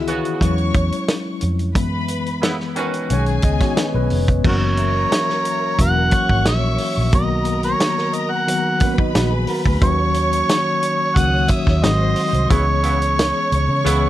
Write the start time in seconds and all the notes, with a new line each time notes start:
Already playing: C#2 D#3 E3 B3 E4 F#4 G#4
0.07 C#3 B3 F#4, closed hi-hat
0.25 closed hi-hat
0.41 E2 F#3 G#3 C#4 C#5 C#6, kick, closed hi-hat
0.58 closed hi-hat
0.74 E2, kick, closed hi-hat
0.92 closed hi-hat
1.08 snare, closed hi-hat
1.41 F2, closed hi-hat
1.59 closed hi-hat
1.75 F#2 E3 G#3 B3 B4 E5 B5, kick, closed hi-hat
2.08 closed hi-hat
2.26 closed hi-hat
2.42 C#3 B3 E4, snare, closed hi-hat
2.60 snare
2.76 D#3 C#4 F#4 B4, closed hi-hat
2.94 closed hi-hat
3.10 B1 D#3 G#3 C#4 G#4 C#5 G#5, closed hi-hat
3.26 closed hi-hat
3.42 C#2 B3 D#5, kick, closed hi-hat
3.60 D#4 F#4 C#5, kick, snare, closed hi-hat
3.77 G#4 B4, snare, closed hi-hat
3.94 B1 G#4 B4
4.10 F1, open hi-hat
4.28 kick, closed hi-hat
4.44 F#1 E3 F#3 A#3 C#4 F#4 A#4 A#5, kick, crash
4.48 F#4 A#4 C#5
4.77 E5, closed hi-hat
5.12 snare, closed hi-hat
5.29 snare
5.45 A#4, closed hi-hat
5.79 E1 E3 F#3 A#3 C#4 F#4 F#5, kick, closed hi-hat
6.11 C#5 C#6, kick, closed hi-hat
6.29 G#1, kick
6.45 A#1 E5, snare, closed hi-hat
6.78 open hi-hat
6.97 A#1
7.13 B1 D#3 F#3 A#3 B3 F#4 A#4 D#5 A#5, kick, closed hi-hat
7.45 closed hi-hat
7.63 C#5, closed hi-hat
7.80 snare, closed hi-hat
7.98 snare
8.13 D#5, closed hi-hat
8.31 F#5
8.47 D#3 F#3 B3 F#4, closed hi-hat
8.80 A#3 C#4 B4 B5, kick, closed hi-hat
8.98 B3 D#4, kick
9.14 A#1 D#4 F#4, snare, closed hi-hat
9.32 G#4
9.47 F#4 A#4, open hi-hat
9.66 D2 G#4 B4, kick
9.81 D#2 D#3 F#3 A#3 C#4 F#4 C#5 C#6, kick, closed hi-hat
10.14 closed hi-hat
10.33 closed hi-hat
10.49 snare, closed hi-hat
10.83 closed hi-hat
11.16 C#2 D#3 F#3 A#3 C#4 F#4 C#5 F#5 D#6, kick, closed hi-hat
11.48 E5, kick, closed hi-hat
11.67 D#2, kick, snare
11.82 G#1 D#3 F#3 G#3 C4 F#4 C5 D#5 C6, snare, closed hi-hat
12.16 open hi-hat
12.33 C2, closed hi-hat
12.50 C#2 C#3 E3 G#3 B3 C#4 E4 G#4 C#5 C#6, kick, closed hi-hat
12.83 C#3 B3 E4, closed hi-hat
13.02 closed hi-hat
13.19 snare, closed hi-hat
13.52 C#2, closed hi-hat
13.69 C#3
13.84 C#2 C#3 E3 G#3 B3 C#4 E4 G#4, closed hi-hat